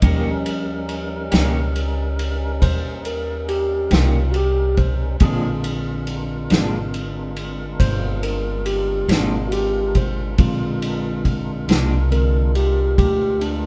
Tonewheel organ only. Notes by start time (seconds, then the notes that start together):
0.03 G3 C#4 D#4 A#4
5.21 G#3 D4 F4 A#4
10.37 G#3 D4 F4 A#4